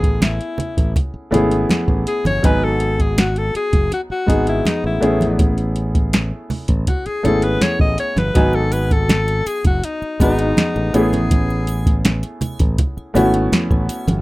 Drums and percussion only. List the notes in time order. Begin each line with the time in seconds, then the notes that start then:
0.03 kick, closed hi-hat
0.22 snare, closed hi-hat, high conga
0.41 closed hi-hat
0.58 closed hi-hat, low conga
0.77 kick, closed hi-hat
0.96 kick, closed hi-hat, muted conga, low conga
1.34 closed hi-hat, muted conga, low conga
1.51 closed hi-hat
1.70 snare, closed hi-hat, high conga
1.88 kick
2.07 closed hi-hat
2.25 closed hi-hat, high conga
2.44 kick, closed hi-hat, muted conga
2.80 closed hi-hat
2.99 kick, closed hi-hat
3.18 snare, closed hi-hat, high conga
3.36 closed hi-hat
3.55 closed hi-hat
3.73 kick, closed hi-hat
3.92 closed hi-hat, muted conga
4.28 kick, closed hi-hat, muted conga
4.47 closed hi-hat
4.65 snare, closed hi-hat, high conga
5.03 closed hi-hat
5.21 closed hi-hat, high conga
5.39 kick, closed hi-hat, muted conga
5.58 closed hi-hat
5.76 closed hi-hat
5.95 kick, closed hi-hat
6.13 snare, closed hi-hat, high conga
6.50 open hi-hat, low conga
6.68 kick, closed hi-hat
6.87 kick, closed hi-hat, low conga
7.06 closed hi-hat
7.25 closed hi-hat, muted conga, low conga
7.42 closed hi-hat
7.61 snare, closed hi-hat, high conga
7.79 kick
7.98 closed hi-hat
8.17 snare, closed hi-hat, high conga
8.35 kick, closed hi-hat, muted conga, muted triangle
8.53 muted triangle
8.72 closed hi-hat, triangle
8.91 kick, closed hi-hat, muted triangle
9.09 snare, closed hi-hat, high conga, muted triangle
9.28 closed hi-hat, muted triangle
9.46 closed hi-hat, triangle
9.65 kick, closed hi-hat, muted triangle
9.84 closed hi-hat, muted triangle
10.02 muted triangle
10.20 kick, closed hi-hat, muted conga, triangle
10.39 closed hi-hat, muted triangle
10.57 snare, closed hi-hat, high conga, muted triangle
10.76 muted triangle
10.94 closed hi-hat, triangle
11.13 closed hi-hat, high conga, muted triangle
11.31 kick, closed hi-hat, muted conga, muted triangle
11.50 muted triangle
11.67 closed hi-hat, triangle
11.86 kick, closed hi-hat, muted triangle
12.05 snare, closed hi-hat, high conga, muted triangle
12.23 closed hi-hat, muted triangle
12.41 closed hi-hat, low conga, triangle
12.59 kick, closed hi-hat, muted triangle
12.78 kick, closed hi-hat, muted conga, low conga, muted triangle
12.98 muted triangle
13.15 closed hi-hat, muted conga, low conga, triangle
13.34 closed hi-hat, muted triangle
13.52 snare, closed hi-hat, high conga, muted triangle
13.71 kick, muted triangle
13.89 closed hi-hat, triangle
14.08 closed hi-hat, high conga, muted triangle